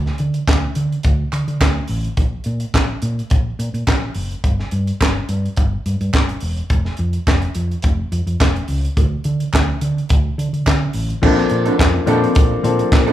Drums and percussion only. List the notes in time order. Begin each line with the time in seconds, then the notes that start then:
0.06 snare
0.18 closed hi-hat
0.34 closed hi-hat
0.48 kick, snare, clap
0.75 closed hi-hat
0.92 closed hi-hat
1.03 kick, closed hi-hat
1.33 clap, closed hi-hat
1.48 closed hi-hat
1.61 kick, snare, clap
1.88 open hi-hat
2.04 closed hi-hat
2.17 kick, closed hi-hat
2.44 closed hi-hat
2.60 closed hi-hat
2.74 kick, snare, clap
3.02 closed hi-hat
3.19 closed hi-hat
3.30 kick, closed hi-hat
3.60 closed hi-hat
3.74 closed hi-hat
3.87 kick, snare, clap
4.15 open hi-hat
4.32 closed hi-hat
4.44 kick, closed hi-hat
4.60 snare
4.71 closed hi-hat
4.87 closed hi-hat
5.01 kick, snare, clap
5.03 clap
5.29 closed hi-hat
5.45 closed hi-hat
5.57 kick, closed hi-hat
5.86 closed hi-hat
6.01 closed hi-hat
6.14 kick, snare, clap
6.15 clap
6.29 closed hi-hat
6.40 open hi-hat
6.57 closed hi-hat
6.70 kick, closed hi-hat
6.85 snare
6.97 closed hi-hat
7.13 closed hi-hat
7.27 kick, snare, clap
7.42 closed hi-hat
7.55 closed hi-hat
7.71 closed hi-hat
7.82 kick, closed hi-hat
8.12 closed hi-hat
8.27 closed hi-hat
8.40 kick, snare, clap
8.56 closed hi-hat
8.68 open hi-hat
8.85 closed hi-hat
8.97 kick, closed hi-hat
9.24 closed hi-hat
9.40 closed hi-hat
9.53 kick, snare, clap
9.56 clap
9.81 closed hi-hat
9.98 closed hi-hat
10.09 kick, closed hi-hat
10.39 closed hi-hat
10.54 closed hi-hat
10.67 kick, snare, clap
10.93 open hi-hat
11.10 closed hi-hat
11.23 kick, crash
11.38 snare
11.50 closed hi-hat
11.66 closed hi-hat
11.79 kick, snare, clap
12.07 closed hi-hat
12.24 closed hi-hat
12.35 kick, closed hi-hat
12.64 closed hi-hat
12.79 closed hi-hat
12.92 kick, snare, clap
13.08 closed hi-hat